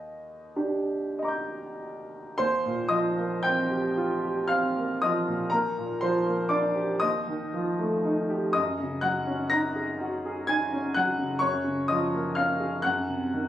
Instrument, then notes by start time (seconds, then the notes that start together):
grand piano
Already playing: D#2 D#5
0.56 D4 G4
1.19 D#5 A#5
1.25 D6 G6
2.38 D#2 C5 C6
2.65 A#2
2.89 F3 D#5 D#6
3.16 A#3
3.43 C4 G5 G6
3.69 G4
3.97 F4
4.23 G4
4.48 C4 F5 F6
4.76 A#3
5.02 F3 D#5 D#6
5.27 A#2
5.50 D#2 A#4 A#5
5.78 A#2
6.01 F3 C5 C6
6.26 A#3
6.49 D4 D5 D6
6.75 G4
7.00 D#2 D#5 D#6
7.27 D#3
7.54 F3
7.79 A3
8.05 D#4
8.30 G4
8.53 F#2 D#5 D#6
8.79 C#3
9.01 F#3 F#5 F#6
9.27 C#4
9.50 D#4 A#5 A#6
9.76 G#4
10.00 F#4
10.26 G#4
10.47 D#4 G#5 G#6
10.73 C#4
10.94 F#3 F#5 F#6
11.18 C#3
11.39 F#2 C#5 C#6
11.64 C#3
11.88 F3 D#5 D#6
12.13 A#3
12.35 C#4 F5 F6
12.60 G#4
12.82 F#2 F#5 F#6
13.09 C3
13.34 D#3